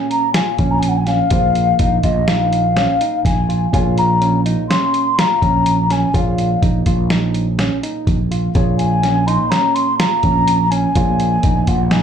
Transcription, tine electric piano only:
0.00 0.22 C#4 medium
0.36 0.53 F4 medium
0.59 0.94 C#4 medium
1.08 1.25 C#4 medium
1.32 1.66 F4 medium
1.80 1.97 D#4 medium
2.04 2.22 F4 medium
2.28 2.63 D#4 medium
2.77 2.94 C#4 medium
3.01 3.36 D#4 medium
3.49 3.66 F4 medium
3.74 4.08 F4 medium
4.21 4.39 C#4 medium
4.46 4.63 D#4 medium
4.70 5.05 C#4 medium
5.18 5.36 F4 medium
5.43 5.78 C#4 medium
5.91 6.08 C#4 medium
6.15 6.49 F4 medium
6.63 6.80 D#4 medium
6.87 7.04 F4 medium
7.11 7.46 D#4 medium
7.59 7.76 C#4 medium
7.83 8.18 D#4 medium
8.31 8.48 F4 medium
8.55 8.90 F4 medium
9.04 9.21 C#4 medium
9.27 9.45 D#4 medium
9.51 9.86 C#4 medium
10.00 10.17 F4 medium
10.24 10.58 C#4 medium
10.72 10.89 C#4 medium
10.96 11.31 F4 medium
11.44 11.61 D#4 medium
11.68 11.85 F4 medium
11.91 12.03 D#4 medium

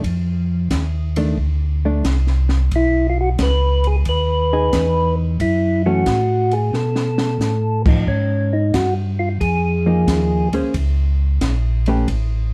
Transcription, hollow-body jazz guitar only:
1.17 1.36 D#3 medium
1.17 1.36 A3 medium
1.17 1.36 D4 medium
1.85 2.04 A3 soft
1.85 2.04 D4 medium
4.53 5.36 D#4 medium
4.53 5.36 G#4 medium
5.86 6.05 E3 medium
5.86 6.05 A3 medium
5.86 6.05 C#4 medium
7.87 8.06 F3 medium
7.87 8.06 D#4 medium
9.86 10.48 F3 medium
9.86 10.49 A#3 medium
9.86 10.49 D#4 medium
10.54 10.73 A#3 medium
10.54 10.73 C#4 soft
10.54 10.73 G#4 medium
10.54 10.73 C5 medium
11.88 12.06 A3 medium
11.88 12.06 C#4 medium
11.88 12.07 G4 medium
11.88 12.07 B4 medium

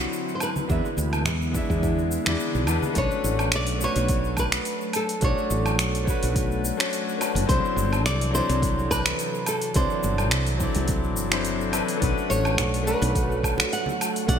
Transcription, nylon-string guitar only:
0.00 0.37 F#4 medium
0.35 0.42 C5 medium
0.43 2.36 B4 medium
2.98 3.55 C#5 loud
3.56 3.83 D5 loud
3.84 4.35 C#5 loud
4.39 4.97 B4 loud
4.96 5.22 A4 medium
5.24 7.18 C#5 medium
7.49 8.02 C5 loud
8.06 8.34 D5 loud
8.35 8.90 C5 loud
8.91 9.49 B4 loud
9.48 9.77 A4 medium
9.76 11.70 C5 medium
12.30 12.87 C#5 loud
12.87 13.40 B4 loud
13.73 14.25 F#5 loud
14.29 14.39 F#5 loud

